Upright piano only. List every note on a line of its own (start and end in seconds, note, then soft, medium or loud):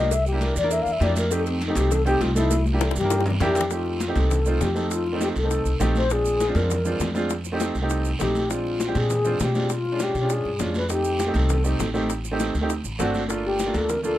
0.00 0.11 A#3 medium
0.00 0.11 D4 medium
0.00 0.11 F4 medium
0.00 0.11 G4 medium
0.32 0.54 A#3 medium
0.32 0.54 D4 medium
0.32 0.55 E4 medium
0.32 0.55 G4 medium
0.62 0.89 A#3 medium
0.62 0.90 D4 medium
0.62 0.90 E4 medium
0.62 0.90 A#4 medium
1.00 1.22 A#3 medium
1.00 1.22 D4 medium
1.00 1.22 E4 medium
1.00 1.22 G4 medium
1.31 1.57 A3 medium
1.31 1.58 C4 medium
1.31 1.58 D#4 medium
1.31 1.58 G4 medium
1.68 1.95 A3 medium
1.68 1.95 C4 medium
1.68 1.95 D#4 medium
1.68 1.95 G4 medium
2.05 2.27 A3 medium
2.05 2.27 C4 medium
2.05 2.27 D#4 medium
2.05 2.28 G4 loud
2.35 2.51 A3 medium
2.35 2.51 C4 medium
2.35 2.51 D#4 medium
2.35 2.51 A4 medium
2.73 2.94 A#3 medium
2.73 2.94 D4 medium
2.73 2.94 E4 medium
2.73 2.95 G4 medium
3.03 3.29 A#3 medium
3.03 3.30 D4 medium
3.03 3.30 E4 medium
3.03 3.30 A#4 medium
3.40 3.62 A#3 loud
3.40 3.62 D4 loud
3.40 3.62 E4 loud
3.40 3.62 G4 loud
3.71 3.97 A3 medium
3.71 3.97 C4 medium
3.71 3.97 D#4 medium
3.71 3.98 G4 medium
4.08 4.34 A3 medium
4.08 4.35 C4 medium
4.08 4.35 D#4 medium
4.08 4.35 G4 medium
4.46 4.67 A3 medium
4.46 4.67 C4 medium
4.46 4.67 D#4 medium
4.46 4.68 F4 medium
4.75 5.01 A3 medium
4.75 5.02 C4 medium
4.75 5.02 D#4 medium
4.75 5.02 A4 medium
5.13 5.34 A3 medium
5.13 5.34 C4 medium
5.13 5.34 D#4 medium
5.13 5.35 F4 medium
5.43 5.69 A3 medium
5.43 5.70 C4 medium
5.43 5.70 D#4 medium
5.43 5.70 A4 medium
5.80 6.01 A3 loud
5.80 6.01 C4 medium
5.80 6.02 D#4 medium
5.80 6.02 G4 loud
6.09 6.36 G#3 medium
6.09 6.37 C4 medium
6.09 6.37 D4 medium
6.09 6.37 F4 medium
6.47 6.74 G#3 medium
6.47 6.74 C4 medium
6.47 6.74 D4 medium
6.47 6.75 F4 medium
6.85 7.06 G#3 medium
6.85 7.06 C4 medium
6.85 7.07 D4 medium
6.85 7.07 F4 medium
7.14 7.30 G#3 medium
7.14 7.30 C4 medium
7.14 7.30 D4 medium
7.14 7.31 F4 loud
7.52 7.73 A3 medium
7.52 7.74 C4 medium
7.52 7.74 D#4 medium
7.52 7.74 G4 loud
7.82 8.09 A3 medium
7.82 8.09 C4 medium
7.82 8.09 D#4 medium
7.82 8.09 G4 medium
8.19 8.41 A3 medium
8.19 8.41 C4 medium
8.19 8.41 D#4 medium
8.19 8.41 G4 medium
8.49 8.76 G#3 medium
8.49 8.76 C4 medium
8.49 8.76 D4 medium
8.49 8.77 F4 medium
8.87 9.13 G#3 medium
8.87 9.14 C4 medium
8.87 9.14 D4 medium
8.87 9.14 G4 medium
9.24 9.46 G#3 medium
9.24 9.46 C4 medium
9.24 9.46 D4 medium
9.24 9.47 F4 medium
9.54 9.70 G#3 medium
9.54 9.70 C4 medium
9.54 9.70 D4 medium
9.54 9.70 F4 medium
9.92 10.13 G#3 medium
9.92 10.13 C#4 medium
9.92 10.13 D4 medium
9.92 10.14 F4 medium
10.21 10.48 G#3 medium
10.21 10.48 C#4 medium
10.21 10.49 D4 medium
10.21 10.49 F4 medium
10.59 10.80 G#3 medium
10.59 10.81 C#4 medium
10.59 10.81 D4 medium
10.59 10.81 F4 medium
10.89 11.15 A3 medium
10.89 11.16 C4 medium
10.89 11.16 D#4 medium
10.89 11.16 G4 medium
11.27 11.53 A3 medium
11.27 11.53 C4 medium
11.27 11.54 D#4 medium
11.27 11.54 G4 medium
11.64 11.85 A3 medium
11.64 11.86 C4 medium
11.64 11.86 D#4 medium
11.64 11.86 G4 medium
11.94 12.09 A3 medium
11.94 12.10 C4 medium
11.94 12.10 D#4 medium
11.94 12.10 G4 loud
12.31 12.53 A3 medium
12.31 12.53 C4 medium
12.31 12.53 D#4 medium
12.31 12.53 G4 medium
12.61 12.69 A3 medium
12.61 12.69 C4 medium
12.61 12.70 D#4 medium
12.61 12.70 G4 loud
12.99 13.20 A3 medium
12.99 13.20 C4 medium
12.99 13.21 D4 medium
12.99 13.21 F#4 loud
13.29 13.55 A3 medium
13.29 13.56 A#3 medium
13.29 13.56 D4 medium
13.29 13.56 F4 medium
13.66 13.93 A3 medium
13.66 13.93 A#3 medium
13.66 13.93 D4 medium
13.66 13.93 F4 medium
14.03 14.18 A3 medium
14.03 14.18 A#3 medium
14.03 14.18 D4 medium
14.03 14.18 F4 loud